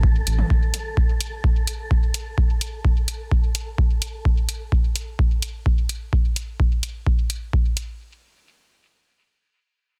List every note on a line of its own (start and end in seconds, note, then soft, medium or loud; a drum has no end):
0.00 0.21 A1 medium
0.00 4.26 A4 medium
0.00 kick loud
0.27 0.43 A1 loud
0.27 closed hi-hat medium
0.39 high tom medium
0.50 kick loud
0.74 closed hi-hat medium
0.97 kick loud
1.21 closed hi-hat medium
1.44 kick loud
1.67 closed hi-hat medium
1.91 kick loud
2.14 closed hi-hat medium
2.38 kick loud
2.61 closed hi-hat medium
2.85 kick loud
3.08 closed hi-hat medium
3.31 kick loud
3.55 closed hi-hat medium
3.78 kick loud
4.02 closed hi-hat medium
4.25 kick loud
4.49 closed hi-hat medium
4.72 kick loud
4.96 closed hi-hat medium
5.19 kick loud
5.42 closed hi-hat medium
5.66 kick loud
5.89 closed hi-hat medium
6.13 kick loud
6.36 closed hi-hat medium
6.60 kick loud
6.83 closed hi-hat medium
7.07 kick loud
7.30 closed hi-hat medium
7.53 kick loud
7.77 closed hi-hat medium